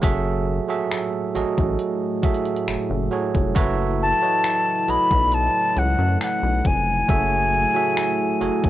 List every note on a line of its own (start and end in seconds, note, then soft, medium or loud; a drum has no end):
0.02 0.60 F#1 loud
0.02 3.52 A2 medium
0.02 0.44 F#3 loud
0.02 3.52 A3 medium
0.02 8.70 E4 medium
0.02 0.45 F#4 medium
0.02 0.45 G#4 loud
0.02 0.45 A4 medium
0.02 0.45 E5 loud
0.02 kick loud
0.02 closed hi-hat medium
0.68 1.11 F#3 medium
0.68 1.11 F#4 medium
0.68 1.11 G#4 medium
0.68 1.11 A4 medium
0.68 1.11 E5 medium
0.91 finger snap loud
0.91 closed hi-hat medium
1.34 1.44 A1 soft
1.34 1.91 F#3 medium
1.34 1.91 F#4 medium
1.34 1.91 G#4 medium
1.34 1.91 A4 medium
1.34 1.91 D#5 loud
1.34 closed hi-hat medium
1.58 1.77 A1 medium
1.58 kick medium
1.79 closed hi-hat medium
2.23 2.79 F#3 medium
2.23 2.79 F#4 medium
2.23 2.79 G#4 medium
2.23 2.80 A4 medium
2.23 2.80 E5 medium
2.23 kick medium
2.23 closed hi-hat soft
2.34 closed hi-hat medium
2.46 closed hi-hat medium
2.57 closed hi-hat medium
2.68 2.77 F#1 soft
2.68 finger snap loud
2.68 closed hi-hat medium
2.90 3.09 F#1 medium
3.11 3.39 F#3 medium
3.11 3.40 F#4 medium
3.11 3.40 G#4 medium
3.11 3.40 A4 medium
3.11 3.40 C#5 medium
3.35 3.53 F1 medium
3.35 kick medium
3.55 4.13 F#1 loud
3.55 7.06 C#3 medium
3.55 3.97 F#3 loud
3.55 7.06 A3 medium
3.55 3.97 F#4 medium
3.55 3.98 A4 medium
3.55 3.98 B4 medium
3.55 3.98 C#5 medium
3.55 3.98 E5 loud
3.55 kick loud
3.55 closed hi-hat medium
4.02 4.92 A5 loud
4.22 4.64 F#3 medium
4.22 4.64 F#4 medium
4.22 4.64 A4 medium
4.22 4.64 B4 medium
4.22 4.64 C#5 medium
4.22 4.65 D#5 medium
4.44 finger snap loud
4.44 closed hi-hat medium
4.88 4.97 B1 soft
4.88 5.99 F#3 medium
4.88 6.00 F#4 medium
4.88 6.00 A4 medium
4.88 6.00 B4 medium
4.88 6.00 C#5 medium
4.88 6.00 D#5 medium
4.88 5.36 B5 loud
4.88 closed hi-hat medium
5.11 5.49 B1 medium
5.11 kick medium
5.32 5.80 A5 loud
5.32 closed hi-hat medium
5.77 5.95 C#2 medium
5.77 6.22 F#5 medium
5.77 closed hi-hat medium
5.98 6.17 F#2 loud
6.21 6.68 F#5 medium
6.21 finger snap loud
6.21 closed hi-hat medium
6.43 6.62 B1 medium
6.65 7.03 F1 medium
6.65 8.70 G#5 loud
6.65 kick medium
7.08 7.66 F#1 loud
7.08 8.70 A2 medium
7.08 7.50 F#3 medium
7.08 8.70 A3 medium
7.08 7.51 F#4 medium
7.08 7.51 G#4 medium
7.08 7.51 A4 medium
7.08 7.51 E5 medium
7.08 kick loud
7.08 closed hi-hat medium
7.75 8.17 F#3 medium
7.75 8.17 F#4 medium
7.75 8.17 G#4 medium
7.75 8.17 A4 medium
7.75 8.17 E5 medium
7.97 finger snap loud
7.97 closed hi-hat soft
8.40 8.50 F#1 soft
8.40 8.70 F#3 medium
8.40 8.70 F#4 medium
8.40 8.70 G#4 medium
8.40 8.70 A4 medium
8.40 8.70 C#5 loud
8.40 closed hi-hat medium
8.64 8.70 F#1 medium
8.64 kick medium